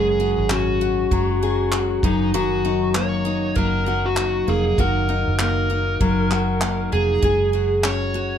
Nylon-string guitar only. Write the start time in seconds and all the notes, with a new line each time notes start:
Already playing: F#2 F#3 C#4 F#4 G#4
0.20 F#4
0.51 C#4
0.81 F#4
1.12 F#3
1.43 G#4
1.73 F#4
2.04 F#2
2.34 F#2 F#4
2.65 D#4
2.96 A#3
3.26 D#4
3.58 F#3
3.87 F#4
4.17 D#4
4.47 A#3
4.79 F#4
5.10 D#4
5.41 A#3
5.71 D#4
6.01 F#3
6.32 F#4
6.63 D#4
6.94 A#3
7.24 G#4
7.55 F#4
7.85 C#4
8.15 F#4